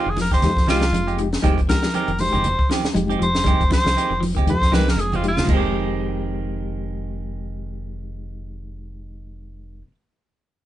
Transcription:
Already playing: F4
0.06 F1 D#3 G#4
0.17 F3, snare, open hi-hat, high conga
0.21 A#4
0.31 D#3 G#3 G4 C5, kick, snare, closed hi-hat
0.42 F2 G#3 D#4 G4, snare, closed hi-hat, low conga
0.57 kick, snare
0.67 C2 D#3 F3 G#3 C4 D#4 F4 G4, snare, closed hi-hat, high conga
0.81 snare, closed hi-hat
0.92 F1 G#3, closed hi-hat, high conga
1.07 G#3 G4, muted clean electric guitar stroke, closed hi-hat
1.17 F3 G#3 D#4 G4, closed hi-hat
1.33 snare, closed hi-hat
1.42 F1 D#3 G3 G#3 C4 D#4 G4, kick, closed hi-hat, low conga
1.58 kick, closed hi-hat
1.68 F3 G#3 D#4 G4 A#4, kick, snare, closed hi-hat, high conga
1.83 F3, snare, closed hi-hat
1.94 D#3 G#3 C4 G4 A#4, closed hi-hat, high conga
2.08 F1 D#3, closed hi-hat
2.19 G#3 D#4 G4 C5, open hi-hat, high conga
2.33 F1 D#3 G#3 C4 G4, closed hi-hat, low conga
2.44 closed hi-hat, low conga
2.59 kick
2.69 D#3 F3 C4 G4, snare, closed hi-hat, high conga
2.83 muted fingered electric bass stroke, snare, closed hi-hat, high conga
2.93 F1 G#3 D#4 G4, closed hi-hat, high conga
3.08 G#3 C4 G4, closed hi-hat, high conga
3.19 F1 F3 C5, closed hi-hat
3.35 snare, closed hi-hat, high conga
3.44 D#3 G3 G#3 C4 G4, kick, closed hi-hat, low conga
3.60 F1, kick, closed hi-hat
3.70 F3 C5, kick, snare, closed hi-hat, high conga
3.84 C2 F3, snare, closed hi-hat
3.97 D#3 G#3 C4 G4, muted fingered electric bass stroke, closed hi-hat
4.10 F1 D#3
4.21 F3, open hi-hat, high conga
4.35 D#3 G#3 C4 G4, kick, closed hi-hat, low conga
4.46 F2 G#3 D#4 G4 C5, closed hi-hat, low conga
4.62 kick, snare
4.71 C2 D#3 F3 G#3 C4 D#4 G4 A#4 B4, snare, closed hi-hat, high conga
4.87 A#4, snare, closed hi-hat, high conga
4.96 F1 G#3, closed hi-hat
5.01 G#4
5.12 G#3 C4 F4 G4, closed hi-hat, low conga
5.22 F3 G#3 D#4 G4, closed hi-hat
5.28 F4
5.37 snare, closed hi-hat, low conga
5.44 D#3 F3 G#3, low conga
5.48 F1 G#3 D#4, kick, crash
5.52 C4 G4
5.57 G4

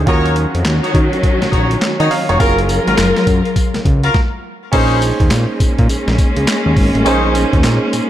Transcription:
0.06 D#2 D#3 F#3 C#4 D#4 F4 F#4 A#4 C#5, kick, closed hi-hat
0.26 closed hi-hat
0.36 closed hi-hat
0.55 F2, closed hi-hat
0.65 D#2, snare, clap, closed hi-hat
0.83 D#4 F#4 C#5, closed hi-hat
0.94 D#3, kick, closed hi-hat
1.13 closed hi-hat
1.23 kick, closed hi-hat
1.42 A#1, snare, closed hi-hat
1.52 A#1 D#4 F#4 C#5, kick, closed hi-hat
1.71 closed hi-hat
1.82 snare, clap, closed hi-hat
2.00 D#3 D#4 F#4 C#5 D#5, closed hi-hat
2.11 F5, open hi-hat
2.29 F1 D#4 F#4 C#5, closed hi-hat
2.39 F#1 F#3 C#4 F4 F#4 G#4 A#4, kick, closed hi-hat, tambourine
2.58 closed hi-hat
2.69 closed hi-hat, tambourine
2.87 G#1 F4 F#4 A#4, closed hi-hat
2.98 F#1, snare, clap, closed hi-hat, tambourine
3.16 snare, closed hi-hat
3.27 F#2, kick, closed hi-hat, tambourine
3.45 closed hi-hat
3.56 kick, closed hi-hat, tambourine
3.74 C#2, snare, closed hi-hat
3.85 C#2, kick, closed hi-hat
4.03 F4 F#4 A#4, closed hi-hat
4.14 kick, snare
4.72 A#1 G#3 A#3 C#4 D#4 G#4 C5, kick, closed hi-hat, crash, tambourine
5.02 closed hi-hat, tambourine
5.20 D#2, kick, closed hi-hat
5.31 A#2, snare, clap, closed hi-hat, tambourine
5.60 A#2, kick, closed hi-hat, tambourine
5.78 A#2, kick, closed hi-hat
5.89 A#1, closed hi-hat, tambourine
6.07 A#1, snare
6.18 kick, closed hi-hat, tambourine
6.36 C#2, closed hi-hat
6.47 snare, clap, closed hi-hat, tambourine
6.66 D#2
6.77 G#1, kick, open hi-hat
6.95 A1, closed hi-hat
7.05 A#1 C#4 D#4 G#4 C5, closed hi-hat, tambourine
7.35 closed hi-hat, tambourine
7.53 D#2, kick, closed hi-hat
7.64 A#2, snare, clap, closed hi-hat, tambourine
7.93 A#2, closed hi-hat, tambourine

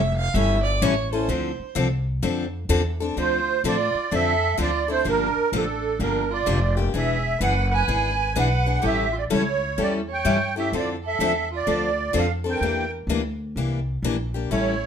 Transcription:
Already playing: F1 E5
0.17 F5
0.34 G1 E3 G3 C#4 E4 A4 E5
0.63 D5
0.82 A1 E3 G3 C#4 E4 A4 C#5
1.12 C#4 E4 A4 C5
1.28 D2 D3 F3 C4 D4 A4
1.59 muted upright bass stroke
1.75 C2 D3 F3 C4 D4 A4
2.22 F2 D3 F3 C4 D4 A4
2.69 E2 D3 F3 C4 D4 A4
3.00 C4 D4 A4
3.17 D2 D3 F3 C4 D4 F4 A4 C5
3.64 A2 D3 F3 C4 D4 F4 A4 D5
3.95 muted upright bass stroke
4.11 F2 D3 F3 C4 D4 A4 E5
4.58 D2 D3 F3 C4 D4 F4 A4
4.62 D5
4.88 C4 D4 E4 A4 C5
5.04 G1 D3 F3 A#3 D4 G4
5.09 A#4
5.37 muted upright bass stroke
5.52 A1 D3 F3 A#3 D4 G4
5.57 A4
5.99 G1 D3 F3 A#3 D4 G4 A#4
6.30 F4 D5
6.46 F1 D3 F3 A#3 D4 G4
6.77 A#3 D4 G4
6.93 E1 E3 B3 D4 G#4
6.98 E5
7.40 F#1 E3 B3 D4 G#4 B4 F#5
7.71 B4 G#5
7.88 G#1 E3 B3 D4 G#4
8.35 B1 E3 B3 D4 G#4 B4
8.39 F#5
8.66 B3 D4 G#4
8.82 A1 E3 G3 C#4 E4 G4 A4
8.87 E5
9.12 F4
9.18 D5
9.30 C#2 E3 G3 C#4 E4 A4
9.35 C#5
9.78 E2 E3 G3 C#4 E4 G4 A4 D5
10.09 C#5
10.13 G5
10.25 G2 E3 G3 C#4 E4 A4
10.56 C#4 E4 G4 A4 E5
10.72 F2 D3 F3 C4 D4 F4 A4
10.77 D5
11.03 A4 E5
11.19 E2 D3 F3 C4 D4 A4
11.52 F4
11.56 D5
11.67 D2 D3 F3 C4 D4 A4
12.13 F2 D3 F3 C4 D4 A4
12.17 A4 F5
12.44 C4 D4 A4 A#4
12.50 G5
12.61 E2 E3 A#3 D4 G4
13.07 D2 E3 A#3 D4 G4
13.56 C2 E3 A#3 D4 G4
14.02 A#1 E3 A#3 D4 G4
14.34 A#3 D4 G4
14.50 A1 E3 G3 C#4 E4 A4 C#5

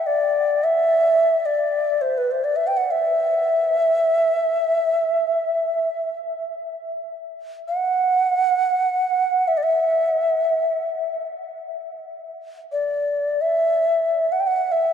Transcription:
0.06 D5
0.64 E5
1.45 D5
2.01 C5
2.18 B4
2.31 C5
2.44 D5
2.56 E5
2.67 G5
2.77 F#5
2.91 E5
7.68 F#5
9.48 E5
9.57 D5
9.63 E5
12.72 D5
13.41 E5
14.32 F#5
14.40 G5
14.47 F#5
14.72 E5

